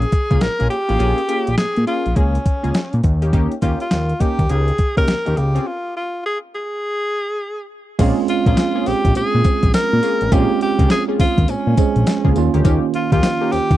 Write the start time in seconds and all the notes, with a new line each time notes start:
Already playing: G#4
0.02 closed hi-hat
0.12 kick, closed hi-hat
0.30 C#2 A#3 C#4 F4 G#4, kick, closed hi-hat
0.41 A#1 A#4, snare, closed hi-hat
0.59 A#1 A#3 C#4 F4 G#4, closed hi-hat
0.70 G4, closed hi-hat
0.88 A1 A#3 C#4 F4 G#4, closed hi-hat
0.99 A#1 A#3 C#4 F4 G#4, closed hi-hat
1.18 closed hi-hat
1.28 A#3 C#4 F4 G#4, closed hi-hat
1.47 A#1, closed hi-hat
1.58 A#2 G#4, snare, closed hi-hat
1.76 A#2, closed hi-hat
1.86 A#3 C#4 F4 G#4, closed hi-hat
2.06 A#1, closed hi-hat
2.16 C#2 A#3 C#4 F4 G#4, kick, closed hi-hat
2.35 closed hi-hat
2.46 kick, closed hi-hat
2.63 C#2 A#3 C#4 F4 G#4, closed hi-hat
2.74 snare, closed hi-hat
2.93 A#2, closed hi-hat
3.04 D#2, kick, closed hi-hat
3.22 A#3 C#4 D#4 G4, closed hi-hat
3.33 A#3 C#4 D#4 G4, kick, closed hi-hat
3.52 closed hi-hat
3.62 D#2 A#3 C#4 D#4 F4 G4, kick, closed hi-hat
3.80 F4, closed hi-hat
3.91 D#2, snare, closed hi-hat
4.09 closed hi-hat
4.20 A#3 C#4 D#4 G4, kick, closed hi-hat
4.39 D#2, kick, closed hi-hat
4.49 C#2 A#3 C#4 D#4 G4 G#4, closed hi-hat
4.68 closed hi-hat
4.78 kick, closed hi-hat
4.96 C#2 A#3 C#4 D#4 G4 A#4, kick, closed hi-hat
5.08 D#2, snare, closed hi-hat
5.25 D#2 A#3 C#4 D#4 G4, closed hi-hat
5.37 C#2 G4, closed hi-hat
5.55 C4 C#4 F4 G#4, closed hi-hat
5.67 F4
5.97 F4
6.26 G#4
6.55 G#4
7.99 A#1 G#3 A#3 C4 C#4 F4 G#4, kick, closed hi-hat, crash, tambourine, cowbell
8.28 F4, closed hi-hat
8.46 A#1 A#3 C#4 F4 G#4, kick, closed hi-hat
8.57 snare, closed hi-hat, tambourine, cowbell
8.75 A#3 C#4 F4 G#4
8.86 A#1 G4, open hi-hat, tambourine, cowbell
9.05 A#1, kick, closed hi-hat
9.15 A#2 G#4, closed hi-hat, tambourine, cowbell
9.35 A#2
9.44 kick, closed hi-hat, tambourine, cowbell
9.63 A#1, kick, closed hi-hat
9.74 A#4, snare, closed hi-hat, tambourine, cowbell
9.93 A#2
10.02 A#3 C#4 F4 G#4, closed hi-hat, tambourine
10.21 A1, closed hi-hat
10.31 A#1 G#3 A#3 C4 C#4 F4 G4 G#4, kick, closed hi-hat, tambourine, cowbell
10.61 G4, closed hi-hat
10.79 C#2 A#3 C#4 F4 G#4, kick, closed hi-hat
10.90 G#4, snare, closed hi-hat, tambourine, cowbell
11.08 A#3 C#4 F4 G#4
11.20 D#2 F4, kick, open hi-hat, tambourine, cowbell
11.38 D#2, kick, closed hi-hat
11.48 A#2 C#4, closed hi-hat, tambourine, cowbell
11.67 A#2
11.77 G#3 C#4 G#4 C5, kick, closed hi-hat, tambourine, cowbell
11.96 A#1, closed hi-hat
12.07 snare, closed hi-hat, tambourine, cowbell
12.24 C#2 A#3 C#4 F4 G#4, kick
12.36 D#2 D#3 A#3 C#4 F4, closed hi-hat, tambourine
12.54 D2 A#3 C#4 D#4 G4, closed hi-hat
12.64 D#2 A#3 C#4 D#4 G4, kick, closed hi-hat, tambourine, cowbell
12.94 F4, closed hi-hat
13.12 D#2 A#3 C#4 D#4 F4 G4, kick, closed hi-hat
13.23 snare, closed hi-hat, tambourine, cowbell
13.41 A#3 C#4 D#4 G4
13.52 D#2 G4, open hi-hat, tambourine, cowbell
13.71 D#2, kick, closed hi-hat